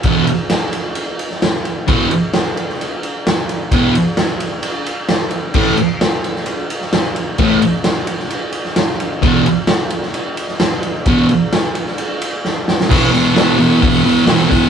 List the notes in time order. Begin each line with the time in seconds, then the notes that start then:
0.03 E2 B2 E3, kick, ride
0.27 ride
0.50 snare, ride
0.73 ride
0.95 ride
1.19 ride
1.31 snare
1.42 snare, ride
1.65 ride
1.87 E2 B2 E3, kick, ride
2.11 ride
2.33 snare, ride
2.57 ride
2.69 snare
2.81 ride
3.03 ride
3.27 snare, ride
3.49 ride
3.72 E2 B2 E3, kick, ride
3.95 ride
4.17 snare, ride
4.40 ride
4.63 ride
4.86 ride
5.08 snare, ride
5.31 ride
5.54 A2 E3 A3, kick, crash
5.77 ride
6.01 snare, ride
6.24 ride
6.35 snare
6.46 ride
6.70 ride
6.81 snare
6.93 snare, ride
7.16 ride
7.38 A2 E3 A3, kick, ride
7.62 ride
7.84 snare, ride
8.07 ride
8.19 snare
8.30 ride
8.52 ride
8.65 snare
8.76 snare, ride
9.00 ride
9.22 E2 B2 E3, kick, ride
9.46 ride
9.67 snare, ride
9.90 ride
10.02 snare
10.14 ride
10.37 ride
10.48 snare
10.60 snare, ride
10.83 ride
11.06 E2 B2 E3, kick, ride
11.29 ride
11.53 snare, ride
11.75 ride
11.87 snare
11.98 ride
12.22 ride
12.45 snare
12.68 snare
12.81 snare
12.90 E2 B2 E3, kick, crash
13.12 E2 B2 E3, open hi-hat
13.36 E2 B2 E3, snare, open hi-hat
13.58 E2 B2 E3, open hi-hat
13.81 E2 B2 E3, kick, open hi-hat
14.04 E2 B2 E3, open hi-hat
14.25 E2 B2 E3, snare, open hi-hat
14.40 snare
14.49 E2 B2 E3, kick, open hi-hat